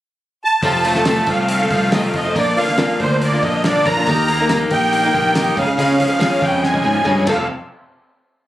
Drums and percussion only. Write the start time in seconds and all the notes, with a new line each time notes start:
0.63 kick, open hi-hat
0.85 open hi-hat
0.95 snare
1.05 snare, open hi-hat
1.26 kick, open hi-hat
1.48 open hi-hat
1.71 kick, open hi-hat
1.92 snare, open hi-hat
2.14 kick, open hi-hat
2.36 kick, open hi-hat
2.57 open hi-hat
2.68 snare
2.78 snare, open hi-hat
3.00 kick, open hi-hat
3.22 open hi-hat
3.43 kick, open hi-hat
3.64 snare, open hi-hat
3.85 kick, snare, open hi-hat
4.07 kick, open hi-hat
4.28 open hi-hat
4.49 snare, open hi-hat
4.71 kick, open hi-hat
4.93 open hi-hat
5.14 kick, open hi-hat
5.35 snare, open hi-hat
5.57 kick, open hi-hat
5.79 open hi-hat
6.00 open hi-hat
6.21 snare, open hi-hat
6.42 kick, open hi-hat
6.64 snare
6.74 high tom
6.95 mid tom
7.06 kick
7.27 kick, crash